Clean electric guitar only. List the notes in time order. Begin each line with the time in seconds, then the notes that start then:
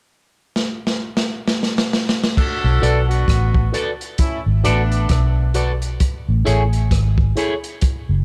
2.82 F#4 A4 D5
3.74 F#4 A4 D5
4.65 F#4 A4 D5
5.55 F#4 A4 D5
6.45 E4 G#4 C#5
7.37 E4 G#4 C#5